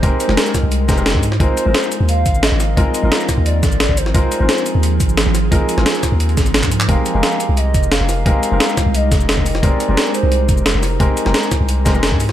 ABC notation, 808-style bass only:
X:1
M:4/4
L:1/16
Q:1/4=175
K:Fm
V:1 name="808-style bass" clef=bass
F,,, z2 F,,, z3 C,,3 F,,,3 A,,3 | A,,, z2 A,,, z3 E,,3 A,,,3 A,,,3 | A,,, z2 A,,, z3 E,,3 A,,,3 A,,,3 | A,,, z2 A,,, z3 E,,3 A,,,3 A,,,3 |
A,,, z2 A,,, z3 E,,3 A,,,3 A,,3 | F,,, z2 F,,, z3 C,,3 F,,,3 F,,,3 | F,,, z2 F,,, z3 C,,3 F,,,3 F,,,3 | F,,, z2 F,,, z3 C,,3 F,,,3 F,,,3 |
F,,, z2 F,,, z3 C,,3 F,,,3 A,,3 |]